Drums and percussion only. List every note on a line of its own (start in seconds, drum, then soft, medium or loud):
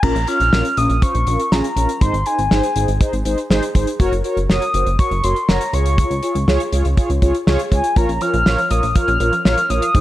0.03 kick loud
0.03 crash medium
0.16 closed hi-hat soft
0.27 closed hi-hat medium
0.40 closed hi-hat soft
0.53 snare loud
0.65 closed hi-hat medium
0.77 closed hi-hat medium
0.90 closed hi-hat soft
1.02 kick loud
1.02 closed hi-hat medium
1.15 closed hi-hat soft
1.27 closed hi-hat medium
1.40 closed hi-hat soft
1.52 snare loud
1.64 closed hi-hat medium
1.77 closed hi-hat medium
1.89 closed hi-hat medium
2.01 kick loud
2.01 closed hi-hat medium
2.14 closed hi-hat medium
2.26 closed hi-hat medium
2.39 closed hi-hat soft
2.51 snare loud
2.63 closed hi-hat medium
2.76 closed hi-hat medium
2.88 closed hi-hat medium
3.01 kick loud
3.01 closed hi-hat medium
3.13 closed hi-hat soft
3.25 closed hi-hat medium
3.38 closed hi-hat soft
3.50 snare loud
3.63 closed hi-hat medium
3.75 kick medium
3.75 closed hi-hat medium
3.87 closed hi-hat medium
4.00 kick loud
4.00 closed hi-hat medium
4.13 closed hi-hat soft
4.24 closed hi-hat medium
4.37 closed hi-hat soft
4.50 snare loud
4.62 closed hi-hat medium
4.74 closed hi-hat medium
4.87 closed hi-hat soft
4.99 kick loud
4.99 closed hi-hat medium
5.11 closed hi-hat soft
5.24 closed hi-hat medium
5.36 closed hi-hat soft
5.49 snare loud
5.61 closed hi-hat medium
5.73 closed hi-hat medium
5.86 closed hi-hat medium
5.98 kick loud
5.98 closed hi-hat medium
6.11 closed hi-hat soft
6.23 closed hi-hat medium
6.35 closed hi-hat soft
6.48 snare loud
6.60 closed hi-hat medium
6.72 closed hi-hat medium
6.85 closed hi-hat soft
6.97 kick loud
6.97 closed hi-hat medium
7.10 closed hi-hat soft
7.22 kick loud
7.22 closed hi-hat medium
7.35 closed hi-hat soft
7.47 snare loud
7.59 closed hi-hat medium
7.72 kick medium
7.72 closed hi-hat medium
7.84 closed hi-hat medium
7.96 kick loud
7.96 closed hi-hat medium
8.09 closed hi-hat medium
8.21 closed hi-hat medium
8.34 closed hi-hat soft
8.46 snare loud
8.58 closed hi-hat medium
8.71 closed hi-hat medium
8.83 closed hi-hat medium
8.95 kick loud
8.95 closed hi-hat medium
9.08 closed hi-hat soft
9.20 closed hi-hat medium
9.33 closed hi-hat soft
9.45 snare loud
9.58 closed hi-hat medium
9.70 closed hi-hat medium
9.82 closed hi-hat medium
9.95 kick loud
9.95 closed hi-hat medium